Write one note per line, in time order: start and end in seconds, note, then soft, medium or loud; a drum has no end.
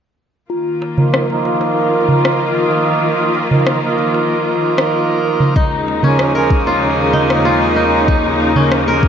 0.50 5.52 D#3 medium
0.50 5.52 A#3 medium
0.50 9.08 F4 medium
0.50 5.52 F4 medium
0.82 darbuka ka soft
0.82 darbuka tek medium
0.97 1.26 F3 medium
0.97 1.26 A#3 medium
0.97 1.26 D#4 medium
0.97 1.27 A#4 medium
0.97 darbuka dum medium
1.14 cross-stick medium
1.28 3.46 F3 medium
1.28 3.47 A#3 medium
1.28 3.48 D#4 medium
1.28 3.48 A#4 medium
1.28 darbuka ka medium
1.45 darbuka tek medium
1.61 darbuka tek medium
2.08 darbuka dum medium
2.25 cross-stick medium
2.25 darbuka tek soft
2.71 darbuka tek medium
3.35 darbuka ka soft
3.35 darbuka tek medium
3.51 3.79 F3 medium
3.51 3.79 A#3 medium
3.51 3.79 D#4 medium
3.51 3.80 A#4 medium
3.51 darbuka dum medium
3.67 cross-stick medium
3.81 5.53 F3 medium
3.81 5.54 A#3 medium
3.81 5.55 D#4 medium
3.81 5.55 A#4 medium
3.81 darbuka ka medium
3.99 darbuka tek medium
4.14 darbuka tek medium
4.61 darbuka ka soft
4.78 cross-stick medium
4.78 darbuka tek medium
5.25 darbuka ka medium
5.40 darbuka dum medium
5.56 9.08 D#2 medium
5.56 9.08 C#3 medium
5.56 8.06 G#3 medium
5.56 9.08 D#4 medium
5.56 7.13 D#4 medium
5.56 kick loud
5.87 darbuka ka soft
5.87 darbuka tek medium
6.03 6.31 F3 medium
6.03 6.32 A#3 medium
6.03 7.78 C#4 medium
6.03 6.32 C#4 medium
6.03 6.32 G#4 medium
6.03 darbuka dum loud
6.19 cross-stick medium
6.34 8.52 F3 medium
6.34 8.52 A#3 medium
6.34 8.53 C#4 medium
6.34 8.54 G#4 medium
6.34 7.62 A#4 medium
6.34 darbuka ka medium
6.50 kick medium
6.50 darbuka tek medium
6.67 7.45 F4 medium
6.67 darbuka tek medium
7.13 7.76 D#4 medium
7.13 darbuka dum medium
7.30 cross-stick medium
7.30 darbuka tek medium
7.45 8.96 F4 medium
7.76 8.08 D#4 medium
7.76 darbuka tek medium
8.08 9.08 A#3 medium
8.08 9.08 D#4 medium
8.08 kick loud
8.40 darbuka ka medium
8.40 darbuka tek medium
8.56 8.84 F3 medium
8.56 8.84 A#3 medium
8.56 9.08 C#4 medium
8.56 8.84 C#4 medium
8.56 8.85 G#4 medium
8.56 darbuka dum loud
8.72 cross-stick medium
8.86 9.08 F3 medium
8.86 9.08 A#3 medium
8.86 9.08 C#4 medium
8.86 9.08 G#4 medium
8.86 9.08 A#4 medium
8.86 darbuka ka medium
9.03 kick loud
9.03 darbuka tek medium